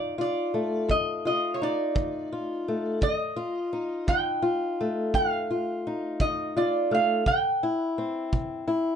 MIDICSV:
0, 0, Header, 1, 4, 480
1, 0, Start_track
1, 0, Tempo, 708383
1, 2046, Time_signature, 12, 3, 24, 8
1, 6069, End_track
2, 0, Start_track
2, 0, Title_t, "Resonator guitar played with a steel bar"
2, 0, Program_c, 0, 25
2, 0, Note_on_c, 0, 74, 81
2, 134, Note_off_c, 0, 74, 0
2, 142, Note_on_c, 0, 74, 68
2, 612, Note_off_c, 0, 74, 0
2, 615, Note_on_c, 0, 75, 92
2, 851, Note_off_c, 0, 75, 0
2, 859, Note_on_c, 0, 75, 79
2, 1045, Note_on_c, 0, 73, 64
2, 1051, Note_off_c, 0, 75, 0
2, 1090, Note_off_c, 0, 73, 0
2, 1105, Note_on_c, 0, 74, 83
2, 2050, Note_off_c, 0, 74, 0
2, 2053, Note_on_c, 0, 75, 90
2, 2770, Note_on_c, 0, 79, 99
2, 2791, Note_off_c, 0, 75, 0
2, 3485, Note_off_c, 0, 79, 0
2, 3487, Note_on_c, 0, 77, 93
2, 4181, Note_off_c, 0, 77, 0
2, 4208, Note_on_c, 0, 75, 90
2, 4452, Note_off_c, 0, 75, 0
2, 4454, Note_on_c, 0, 74, 86
2, 4699, Note_off_c, 0, 74, 0
2, 4706, Note_on_c, 0, 77, 84
2, 4926, Note_off_c, 0, 77, 0
2, 4929, Note_on_c, 0, 79, 88
2, 5623, Note_off_c, 0, 79, 0
2, 6069, End_track
3, 0, Start_track
3, 0, Title_t, "Steel-string acoustic guitar"
3, 0, Program_c, 1, 25
3, 0, Note_on_c, 1, 41, 70
3, 0, Note_on_c, 1, 63, 56
3, 0, Note_on_c, 1, 65, 72
3, 121, Note_off_c, 1, 65, 0
3, 123, Note_on_c, 1, 65, 69
3, 320, Note_off_c, 1, 41, 0
3, 366, Note_on_c, 1, 57, 52
3, 600, Note_on_c, 1, 41, 75
3, 841, Note_off_c, 1, 65, 0
3, 849, Note_on_c, 1, 65, 52
3, 1035, Note_off_c, 1, 41, 0
3, 1087, Note_off_c, 1, 63, 0
3, 1095, Note_on_c, 1, 63, 60
3, 1322, Note_on_c, 1, 41, 72
3, 1568, Note_off_c, 1, 65, 0
3, 1575, Note_on_c, 1, 65, 60
3, 1756, Note_off_c, 1, 41, 0
3, 1806, Note_off_c, 1, 57, 0
3, 1818, Note_on_c, 1, 57, 52
3, 2022, Note_off_c, 1, 63, 0
3, 2022, Note_off_c, 1, 65, 0
3, 2023, Note_off_c, 1, 57, 0
3, 2040, Note_on_c, 1, 41, 67
3, 2280, Note_on_c, 1, 65, 73
3, 2475, Note_off_c, 1, 41, 0
3, 2526, Note_on_c, 1, 63, 63
3, 2759, Note_on_c, 1, 41, 68
3, 2990, Note_off_c, 1, 65, 0
3, 2998, Note_on_c, 1, 65, 68
3, 3195, Note_off_c, 1, 41, 0
3, 3257, Note_on_c, 1, 57, 60
3, 3486, Note_on_c, 1, 41, 78
3, 3723, Note_off_c, 1, 65, 0
3, 3731, Note_on_c, 1, 65, 55
3, 3919, Note_off_c, 1, 41, 0
3, 3967, Note_off_c, 1, 63, 0
3, 3976, Note_on_c, 1, 63, 57
3, 4206, Note_on_c, 1, 41, 76
3, 4441, Note_off_c, 1, 65, 0
3, 4449, Note_on_c, 1, 65, 67
3, 4640, Note_off_c, 1, 41, 0
3, 4676, Note_off_c, 1, 57, 0
3, 4684, Note_on_c, 1, 57, 56
3, 4897, Note_off_c, 1, 57, 0
3, 4900, Note_off_c, 1, 65, 0
3, 4904, Note_off_c, 1, 63, 0
3, 4930, Note_on_c, 1, 48, 76
3, 5171, Note_on_c, 1, 64, 68
3, 5362, Note_off_c, 1, 48, 0
3, 5408, Note_on_c, 1, 60, 56
3, 5643, Note_on_c, 1, 48, 73
3, 5876, Note_off_c, 1, 64, 0
3, 5879, Note_on_c, 1, 64, 72
3, 6069, Note_off_c, 1, 48, 0
3, 6069, Note_off_c, 1, 60, 0
3, 6069, Note_off_c, 1, 64, 0
3, 6069, End_track
4, 0, Start_track
4, 0, Title_t, "Drums"
4, 607, Note_on_c, 9, 36, 60
4, 674, Note_off_c, 9, 36, 0
4, 1327, Note_on_c, 9, 36, 68
4, 1394, Note_off_c, 9, 36, 0
4, 2046, Note_on_c, 9, 36, 69
4, 2114, Note_off_c, 9, 36, 0
4, 2764, Note_on_c, 9, 36, 74
4, 2832, Note_off_c, 9, 36, 0
4, 3483, Note_on_c, 9, 36, 61
4, 3551, Note_off_c, 9, 36, 0
4, 4201, Note_on_c, 9, 36, 72
4, 4269, Note_off_c, 9, 36, 0
4, 4922, Note_on_c, 9, 36, 69
4, 4989, Note_off_c, 9, 36, 0
4, 5643, Note_on_c, 9, 36, 70
4, 5710, Note_off_c, 9, 36, 0
4, 6069, End_track
0, 0, End_of_file